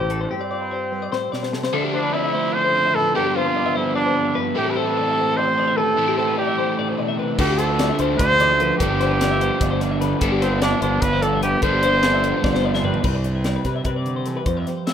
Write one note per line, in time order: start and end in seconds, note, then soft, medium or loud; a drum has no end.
0.00 0.25 A1 medium
0.00 0.28 A3 medium
0.00 0.98 C4 medium
0.00 0.22 G4 medium
0.00 0.31 G4 soft
0.00 0.11 C5 medium
0.10 0.31 A2 medium
0.10 0.21 A4 medium
0.10 closed hi-hat medium
0.21 0.31 D4 medium
0.21 0.31 C5 medium
0.30 1.12 G2 medium
0.30 1.52 C4 medium
0.30 0.41 G4 medium
0.30 0.71 G4 medium
0.41 0.50 D5 medium
0.51 1.71 F4 medium
0.51 0.61 D5 medium
0.61 0.71 B4 medium
0.71 1.73 G4 medium
0.71 0.92 C5 medium
0.92 1.73 G3 medium
0.92 1.02 B4 medium
1.02 1.12 D5 medium
1.12 1.32 A2 medium
1.12 1.32 C5 medium
1.12 snare medium
1.32 1.53 B2 medium
1.32 1.43 D5 medium
1.32 snare medium
1.43 1.53 C5 medium
1.43 snare medium
1.53 1.73 C3 medium
1.53 1.63 A4 medium
1.53 snare medium
1.63 1.73 C5 medium
1.63 snare medium
1.73 3.12 D3 medium
1.73 3.14 D3 medium
1.73 3.14 F3 loud
1.73 3.16 A3 loud
1.73 3.15 D4 medium
1.73 1.84 A4 medium
1.84 1.94 G4 medium
1.94 2.15 D4 medium
1.94 2.55 E4 medium
1.94 2.03 C5 medium
2.03 2.14 B4 medium
2.13 3.37 C4 medium
2.13 2.56 E4 loud
2.13 2.24 D5 medium
2.24 2.34 E5 medium
2.34 3.19 A3 medium
2.34 2.54 C5 medium
2.54 2.95 E4 medium
2.54 2.97 C5 loud
2.54 2.64 D5 medium
2.64 2.75 C5 medium
2.75 2.85 D5 medium
2.86 2.95 E5 medium
2.95 3.13 A2 medium
2.95 3.16 E4 medium
2.95 3.15 A4 loud
2.95 3.15 B4 medium
3.15 4.55 G2 medium
3.15 4.36 G2 medium
3.15 4.55 D3 medium
3.15 4.56 F3 medium
3.15 4.56 B3 loud
3.15 4.56 D4 loud
3.15 3.37 G4 medium
3.15 3.25 A4 medium
3.25 3.35 G4 medium
3.36 3.58 C4 medium
3.36 3.78 F4 loud
3.36 3.46 C5 medium
3.46 3.55 B4 medium
3.55 6.39 C4 medium
3.55 3.65 D5 medium
3.66 3.75 E5 medium
3.75 5.18 G3 medium
3.75 3.95 E4 medium
3.75 3.95 C5 medium
3.95 4.38 D4 loud
3.95 4.05 D5 medium
4.06 4.16 C5 medium
4.16 4.25 D5 medium
4.25 4.36 E5 medium
4.35 4.57 G2 medium
4.35 4.56 B4 medium
4.55 5.96 A2 medium
4.55 5.97 E3 loud
4.55 5.98 A3 medium
4.55 5.98 C4 loud
4.55 5.99 E4 loud
4.55 4.72 G4 loud
4.55 4.66 A4 medium
4.66 4.77 G4 medium
4.70 4.78 B4 medium
4.76 4.98 G4 medium
4.76 5.38 A4 loud
4.76 4.87 C5 medium
4.87 4.97 B4 medium
4.97 5.08 E4 medium
4.97 5.07 D5 medium
5.07 5.38 G4 medium
5.07 5.17 E5 medium
5.17 6.22 A3 medium
5.17 5.37 C5 medium
5.37 5.78 G4 medium
5.37 5.78 C5 loud
5.37 5.47 D5 medium
5.47 5.58 C5 medium
5.58 5.68 D5 medium
5.68 5.78 E5 medium
5.77 7.19 E3 medium
5.77 5.96 G4 medium
5.77 6.17 A4 loud
5.77 5.98 B4 medium
5.97 7.38 A2 medium
5.97 6.78 A2 medium
5.97 7.38 E3 medium
5.97 7.39 A3 loud
5.97 7.40 C4 loud
5.97 7.39 E4 loud
5.97 6.07 A4 medium
6.08 6.18 G4 medium
6.18 7.37 G4 medium
6.18 6.37 A4 medium
6.18 6.28 C5 medium
6.28 6.38 B4 medium
6.38 9.89 C4 medium
6.38 6.95 G4 medium
6.38 6.48 D5 medium
6.48 6.58 E5 medium
6.58 7.99 A3 medium
6.58 6.78 C5 medium
6.79 6.99 A2 medium
6.79 6.89 D5 medium
6.89 6.98 C5 medium
6.98 7.19 B2 medium
6.98 7.08 D5 medium
7.08 7.19 E5 medium
7.19 7.39 C3 medium
7.19 7.39 B4 medium
7.39 7.91 D2 loud
7.39 8.79 D3 medium
7.39 8.20 D3 medium
7.39 8.80 F3 loud
7.39 8.81 A3 medium
7.39 8.81 D4 loud
7.39 7.59 G4 medium
7.39 7.50 A4 medium
7.39 kick loud
7.39 crash loud
7.50 7.60 G4 medium
7.58 7.79 E4 medium
7.58 7.99 A4 medium
7.58 7.70 C5 medium
7.58 closed hi-hat medium
7.70 7.79 B4 medium
7.79 8.81 E4 medium
7.79 7.90 D5 medium
7.79 snare loud
7.79 closed hi-hat medium
7.90 7.99 E5 medium
7.99 8.17 D2 loud
7.99 8.84 A3 medium
7.99 8.20 C5 medium
7.99 closed hi-hat medium
8.18 8.71 D2 medium
8.18 8.40 D3 medium
8.18 8.76 C5 loud
8.18 8.30 D5 medium
8.18 kick loud
8.18 snare soft
8.18 closed hi-hat loud
8.30 8.40 C5 medium
8.40 8.61 E3 medium
8.40 8.51 D5 medium
8.40 closed hi-hat medium
8.51 8.61 E5 medium
8.60 8.81 F3 medium
8.60 8.80 B4 medium
8.60 closed hi-hat medium
8.78 9.49 G1 loud
8.78 10.21 G2 medium
8.78 10.22 G2 medium
8.78 10.20 D3 medium
8.78 10.22 F3 loud
8.78 10.21 B3 medium
8.78 9.96 G4 medium
8.78 8.91 A4 medium
8.78 kick loud
8.78 closed hi-hat loud
8.82 10.23 D4 loud
8.90 9.01 G4 medium
9.00 9.22 F4 medium
9.00 9.11 C5 medium
9.00 snare soft
9.00 closed hi-hat medium
9.11 9.21 B4 medium
9.21 9.62 F4 medium
9.21 9.31 D5 medium
9.21 snare loud
9.21 closed hi-hat loud
9.31 9.41 E5 medium
9.41 10.82 G3 medium
9.41 9.61 C5 medium
9.41 closed hi-hat medium
9.61 10.13 G1 medium
9.61 10.25 F4 medium
9.61 9.71 D5 medium
9.61 kick loud
9.61 snare soft
9.61 closed hi-hat loud
9.71 9.81 C5 medium
9.81 9.91 D5 medium
9.81 snare soft
9.81 closed hi-hat medium
9.91 10.01 E5 medium
10.01 10.20 D3 medium
10.01 10.25 A4 medium
10.01 10.22 B4 medium
10.01 snare soft
10.01 closed hi-hat medium
10.21 10.73 G1 loud
10.21 11.61 G2 loud
10.21 11.62 G2 medium
10.21 11.62 D3 loud
10.21 11.62 F3 medium
10.21 11.62 B3 loud
10.21 11.64 D4 loud
10.21 10.32 A4 medium
10.21 kick loud
10.21 closed hi-hat loud
10.32 10.42 G4 medium
10.42 10.61 C4 medium
10.42 11.02 F4 medium
10.42 10.52 C5 medium
10.42 snare soft
10.42 closed hi-hat medium
10.52 10.62 B4 medium
10.62 10.81 D4 medium
10.62 10.72 G4 medium
10.62 10.72 D5 medium
10.62 snare loud
10.62 closed hi-hat medium
10.72 11.63 A4 medium
10.72 10.82 E5 medium
10.82 10.99 G1 loud
10.82 12.22 G3 medium
10.82 11.04 D4 medium
10.82 11.02 C5 medium
10.82 closed hi-hat medium
11.02 11.54 G1 medium
11.02 11.43 F4 medium
11.02 11.24 B4 loud
11.02 11.13 D5 medium
11.02 kick loud
11.02 closed hi-hat loud
11.13 11.22 C5 medium
11.22 11.42 A4 medium
11.22 11.33 D5 medium
11.22 closed hi-hat medium
11.33 11.43 E5 medium
11.43 11.61 D3 medium
11.43 11.61 F4 medium
11.43 11.62 G4 loud
11.43 11.63 B4 medium
11.43 closed hi-hat medium
11.62 12.32 G1 loud
11.62 13.03 G2 medium
11.62 13.05 G2 medium
11.62 13.03 D3 medium
11.62 13.04 F3 medium
11.62 13.04 B3 loud
11.62 13.04 D4 loud
11.62 11.73 A4 medium
11.62 12.60 C5 loud
11.62 kick loud
11.62 closed hi-hat medium
11.73 11.83 G4 medium
11.83 12.44 F4 medium
11.83 11.94 C5 medium
11.83 closed hi-hat medium
11.94 12.04 B4 medium
12.03 12.85 A4 medium
12.03 12.13 D5 medium
12.03 snare loud
12.03 closed hi-hat medium
12.14 12.24 E5 medium
12.24 13.45 G3 medium
12.24 12.44 C5 medium
12.24 closed hi-hat medium
12.44 12.96 G1 medium
12.44 13.03 F4 medium
12.44 12.54 D5 medium
12.44 kick loud
12.44 snare medium
12.55 12.65 C5 medium
12.55 snare medium
12.65 12.74 D5 medium
12.74 12.84 E5 medium
12.74 snare medium
12.84 13.02 D3 medium
12.84 12.95 G4 medium
12.84 13.04 B4 medium
12.84 floor tom medium
12.94 13.05 A4 medium
12.94 floor tom medium
13.04 13.56 C2 loud
13.04 13.84 C3 medium
13.04 13.15 B4 medium
13.04 kick loud
13.04 crash medium
13.15 13.25 D5 medium
13.24 13.35 E4 medium
13.24 13.45 B4 medium
13.24 closed hi-hat medium
13.35 14.47 G4 soft
13.44 14.87 G3 medium
13.44 13.55 D5 medium
13.44 snare loud
13.44 closed hi-hat medium
13.56 13.65 B4 medium
13.65 13.83 C3 medium
13.65 13.75 B4 medium
13.65 14.44 B4 medium
13.65 kick medium
13.65 snare soft
13.65 closed hi-hat medium
13.76 13.86 E5 medium
13.85 14.37 C3 medium
13.85 14.05 C3 medium
13.85 13.96 B4 medium
13.85 kick loud
13.85 closed hi-hat medium
13.96 14.16 D5 medium
14.06 14.26 D3 medium
14.06 closed hi-hat medium
14.16 14.26 C5 medium
14.26 14.47 E3 medium
14.26 14.36 A4 medium
14.26 snare soft
14.26 closed hi-hat medium
14.37 14.46 B4 medium
14.46 14.64 F2 medium
14.46 14.94 F3 medium
14.46 14.57 C5 medium
14.46 kick loud
14.46 closed hi-hat medium
14.57 14.67 E5 medium
14.67 14.94 G4 medium
14.67 14.87 C5 medium
14.67 snare soft
14.67 closed hi-hat medium
14.87 14.94 A3 medium
14.87 14.94 E5 medium
14.87 snare loud
14.87 closed hi-hat medium